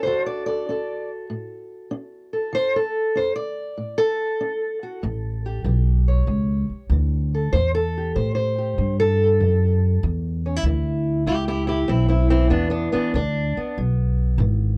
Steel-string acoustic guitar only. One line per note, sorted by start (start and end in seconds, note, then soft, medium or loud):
0.03 0.64 D3 medium
0.03 0.69 D4 soft
0.03 2.53 F#4 soft
0.03 0.25 C5 medium
0.07 0.48 A4 soft
0.26 0.45 D5 medium
0.46 0.70 A4 soft
0.46 1.09 D5 medium
0.69 1.26 D4 medium
0.69 2.33 A4 soft
1.30 1.88 A2 medium
1.91 2.50 D4 medium
2.33 2.76 A4 soft
2.53 3.12 D3 medium
2.53 2.75 C5 loud
2.76 3.17 A4 medium
3.15 3.74 D4 medium
3.15 3.35 C5 medium
3.36 3.99 D5 medium
3.78 4.36 A2 medium
3.98 5.85 A4 loud
4.41 4.99 D4 medium
4.83 5.01 F#4 soft
5.03 5.61 A2 medium
5.46 5.65 G4 soft
5.65 6.23 E3 medium
5.65 7.50 G4 soft
6.08 7.50 C#5 soft
6.28 6.86 E2 medium
6.92 7.49 E3 medium
7.34 7.51 A4 soft
7.53 8.12 A2 medium
7.53 7.73 C5 loud
7.75 8.15 A4 medium
7.97 8.57 G4 soft
8.16 8.74 E3 medium
8.16 8.34 C5 medium
8.35 8.98 C5 medium
8.58 10.00 G4 soft
8.78 9.36 E2 medium
9.00 10.03 A4 loud
9.42 9.99 E3 medium
10.04 10.61 E2 medium
10.46 10.56 C#4 soft
10.56 10.66 E4 soft
10.66 11.24 E3 medium
10.66 11.27 E4 soft
11.27 11.85 E2 medium
11.27 11.34 E4 medium
11.27 11.47 G4 loud
11.48 11.62 E4 medium
11.48 11.67 G4 loud
11.67 11.78 E4 medium
11.67 11.89 G4 medium
11.88 12.30 E3 medium
11.88 12.07 C4 medium
11.88 12.08 E4 medium
12.08 12.29 C4 medium
12.08 12.30 E4 medium
12.30 12.94 E3 soft
12.30 12.50 C4 medium
12.30 12.52 E4 medium
12.50 13.10 E2 medium
12.50 12.69 B3 medium
12.50 12.70 D4 medium
12.70 12.91 B3 medium
12.70 12.92 D4 medium
12.92 13.16 E3 soft
12.92 13.14 B3 medium
12.92 13.14 D4 medium
13.15 13.74 E3 medium
13.15 13.78 D4 loud
13.57 14.78 B3 soft
13.78 14.36 B2 medium
14.40 14.78 E3 medium